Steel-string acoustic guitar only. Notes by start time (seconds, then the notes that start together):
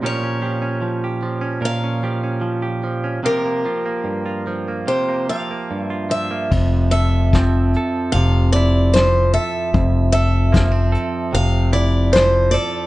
0.06 C#5
1.65 F5
3.26 A#4
4.88 C5
5.29 F5
5.83 E5
6.11 E5
6.91 E5
8.12 F5
8.52 D5
8.94 C5
9.34 E5
10.12 E5
11.35 F5
11.73 D5
12.13 C5
12.51 D5